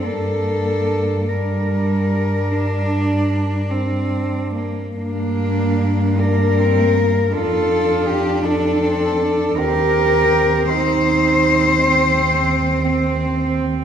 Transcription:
<<
  \new Staff \with { instrumentName = "Cello" } { \time 12/8 \key g \minor \tempo 4. = 53 a'4. bes'2. r4. | d'4. bes'4. a'4 g'8 a'4. | bes'4. c''1 r8 | }
  \new Staff \with { instrumentName = "Cello" } { \time 12/8 \key g \minor d'4. d'1~ d'16 r16 | bes4. d'8 c'8 bes8 f'4. d'8 c'8 d'8 | g'4. ees'4. c'4. c'4. | }
  \new Staff \with { instrumentName = "Cello" } { \time 12/8 \key g \minor bes4. g4. d'4. c'4 bes8 | bes2. d'2. | c'1. | }
  \new Staff \with { instrumentName = "Cello" } { \clef bass \time 12/8 \key g \minor g,1~ g,4.~ g,16 r16 | g,2. f,2. | ees,1. | }
>>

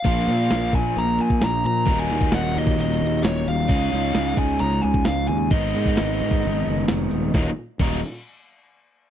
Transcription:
<<
  \new Staff \with { instrumentName = "Lead electric guitar" } { \time 4/4 \key ees \minor \tempo 4 = 132 f''4. aes''8 bes''8 aes''8 bes''8 bes''8~ | bes''16 aes''8. ges''8 ees''8 ees''4 des''8 f''8~ | f''4. aes''8 bes''8 aes''8 f''8 aes''8 | ees''2. r4 |
r1 | }
  \new Staff \with { instrumentName = "Overdriven electric guitar" } { \clef bass \time 4/4 \key ees \minor <bes, f bes d' f'>1 | <ees, bes, ees ges bes ees'>1 | <des aes des' ees' aes'>1 | <aes, ees aes ces' ees'>1 |
<ees, bes, ees ges bes ees'>8 r8 <ees, bes, ees ges bes ees'>8 r2 r8 | }
  \new Staff \with { instrumentName = "Fingered electric bass" } { \clef bass \time 4/4 \key ees \minor bes,,8 bes,8 bes,,8 bes,8 bes,,8 bes,8 bes,,8 bes,8 | ees,,8 ees,8 ees,,8 ees,8 ees,,8 ees,8 ees,,8 ees,,8 | des,8 des,8 des,8 des,8 des,8 des,8 des,8 ees,8 | aes,,8 aes,8 aes,,8 aes,8 aes,,8 ges,,8 f,,8 ees,,8 |
ees,,8 r8 ees,,8 r2 r8 | }
  \new DrumStaff \with { instrumentName = "Drums" } \drummode { \time 4/4 <hh bd>8 hh8 <hh sn>8 <hh bd>8 hh8 hh16 bd16 <hh sn>8 hh8 | <hh bd>8 hh16 bd16 <hh sn>8 hh16 bd16 hh8 hh8 <hh sn>8 hh8 | <hh bd>8 hh8 <hh sn>8 <hh bd>8 hh8 hh16 bd16 <hh sn>8 hh8 | <hh bd>8 hh16 bd16 <hh sn>8 hh16 bd16 hh8 hh8 <hh sn>8 hh8 |
<bd sn>4 <cymc bd>4 r4 r4 | }
>>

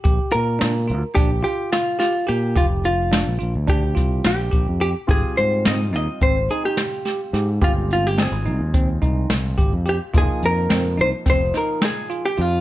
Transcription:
<<
  \new Staff \with { instrumentName = "Hollow-body jazz guitar" } { \time 9/8 \key g \phrygian \tempo 4. = 71 r8 bes'4. g'8 g'8 f'8 f'8 g'8 | f'8 f'4 r8 g'4 g'4 g'8 | aes'8 c''8 ees''8 ees''8 c''8 aes'16 g'4.~ g'16 | f'8 f'16 g'16 aes'2. g'8 |
aes'8 bes'4 c''8 c''8 bes'8 aes'8. g'16 f'8 | }
  \new Staff \with { instrumentName = "Tine electric piano" } { \time 9/8 \key g \phrygian g'4 d'8 f'8 d'8 f'4 g'8 g'8 | g'4 d'8 f'8 d'8 f'4 g'8 g'8 | g'4 c'8 ees'8 c'8 ees'4 g'8 g'8 | g'4 c'8 ees'8 c'8 ees'4 g'8 g'8 |
f'4 c'8 ees'8 c'8 ees'4 f'8 f'8 | }
  \new Staff \with { instrumentName = "Grand piano" } { \time 9/8 \key g \phrygian r1 r8 | r1 r8 | <g c' f'>1~ <g c' f'>8 | <aes c' f'>1~ <aes c' f'>8 |
<f bes ees'>1~ <f bes ees'>8 | }
  \new Staff \with { instrumentName = "Fingered electric bass" } { \clef bass \time 9/8 \key g \phrygian bes,,16 r16 bes,8 bes,8 d,16 r16 bes,,8 r4. bes,8 | f,,4~ f,,16 bes,,16 bes,,16 d,8. c,8 bes,,8 bes,,16 f,8 r16 | aes,,16 r16 aes,8 aes,8 ees,16 r16 aes,,8 r4. aes,8 | g,,4~ g,,16 aes,,16 c,16 ees,8. c,8 c,8 aes,,16 f,8 r16 |
f,,16 r16 f,8 f,8 c,16 r16 f,,8 r4. f,8 | }
  \new DrumStaff \with { instrumentName = "Drums" } \drummode { \time 9/8 <hh bd>8 hh8 <hh sn>8 hh8 <hh bd>8 hh8 <hh sn>8 <hh sn>8 hh8 | <hh bd>8 hh8 <hh sn>8 hh8 <hh bd>8 <hh bd sn>8 <hh sn>8 <hh bd>8 hh8 | <hh bd>8 hh8 <hh sn>8 hh8 <hh bd>8 hh8 <hh sn>8 <hh sn>8 <hh sn>8 | <hh bd>8 hh8 <hh sn>8 hh8 <hh bd>8 <hh bd>8 <hh sn>8 <hh bd>8 hh8 |
<hh bd>8 hh8 <hh sn>8 hh8 <hh bd sn>8 <hh sn>8 <hh sn>8 hh8 hh8 | }
>>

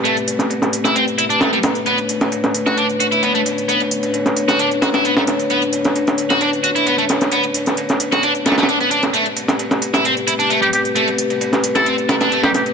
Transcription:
<<
  \new Staff \with { instrumentName = "Muted trumpet" } { \time 4/4 \key b \phrygian \tempo 4 = 132 r1 | r1 | r1 | r1 |
r1 | r2. r16 g'16 g'16 r16 | r4. r16 a'16 r4 r16 g'16 g'16 r16 | }
  \new Staff \with { instrumentName = "Analog synth pad" } { \time 4/4 \key b \phrygian << { <a b'>1~ | <a b'>1~ | <a b'>1~ | <a b'>1~ |
<a b'>1 | <a b'>1~ | <a b'>1 | } \\ { <c' g'>2.~ <c' g'>8 <d' cis''>8~ | <d' cis''>1~ | <d' cis''>1~ | <d' cis''>1~ |
<d' cis''>1 | <c' g'>1~ | <c' g'>1 | } >> }
  \new Staff \with { instrumentName = "Distorted electric guitar" } { \time 4/4 \key b \phrygian a16 r4. e'16 c'16 r16 e'16 d'16 a16 g16 r8 | b16 r4. fis'16 d'16 r16 fis'16 e'16 b16 a16 r8 | b16 r4. fis'16 d'16 r16 fis'16 e'16 b16 a16 r8 | b16 r4. fis'16 d'16 r16 fis'16 e'16 b16 a16 r8 |
b16 r4. fis'16 d'16 r16 a16 a16 d'16 b16 d'16 r16 | a16 r4. e'16 c'16 r16 e'16 d'16 a16 g16 r8 | a16 r4. e'16 c'16 r16 e'16 d'16 a16 g16 r8 | }
  \new DrumStaff \with { instrumentName = "Drums" } \drummode { \time 4/4 <hh cymr>16 hh16 <hh cymr>16 <hh sn>16 <hh cymr>16 <hh sn>16 <hh cymr>16 <hh sn>16 <hh cymr>16 hh16 <hh cymr>16 hh16 <hh sn>16 hh16 <hh cymr sn>16 hh16 | <hh cymr>16 hh16 <hh cymr>16 <hh sn>16 <hh cymr>16 <hh sn>16 <hh cymr>16 <hh sn>16 <hh cymr>16 hh16 <hh cymr>16 hh16 <hh cymr>16 hh16 <hh cymr>16 hh16 | <hh cymr>16 <hh cymr>16 hh16 <hh cymr>16 <hh cymr>16 <hh sn>16 <hh cymr>16 <hh sn>16 <hh cymr>16 hh16 <hh cymr sn>16 <hh sn>16 <hh cymr>16 <hh cymr sn>16 <hh sn>16 <hh cymr>16 | <hh cymr>16 hh16 <hh cymr>16 <hh sn>16 <hh cymr>16 <hh sn>16 <hh cymr>16 <hh sn>16 <hh cymr>16 hh16 <hh cymr>16 hh16 <hh cymr>16 hh16 <hh cymr sn>16 <hh sn>16 |
<hh cymr>16 hh16 <hh cymr>16 <hh sn>16 <hh cymr>16 <hh sn>16 <hh cymr>16 <hh sn>16 <hh cymr>16 hh16 <hh cymr sn>32 <cymr sn>32 <hh cymr sn>32 <cymr sn>32 <hh cymr>16 hh16 <hh cymr>16 <hh sn>16 | <hh cymr>16 hh16 <hh cymr>16 <hh sn>16 <hh cymr>16 <hh sn>16 <hh cymr>16 <hh sn>16 <hh cymr>16 hh16 <hh cymr>16 hh16 <hh cymr>16 hh16 <hh cymr>16 hh16 | <hh cymr>16 <hh cymr>16 hh16 <hh cymr>16 <hh cymr>16 <hh sn>16 <hh cymr>16 <hh sn>16 <hh cymr>16 hh16 <hh cymr sn>16 <hh sn>16 <hh cymr>16 <hh cymr sn>16 <hh sn>16 <hh cymr>16 | }
>>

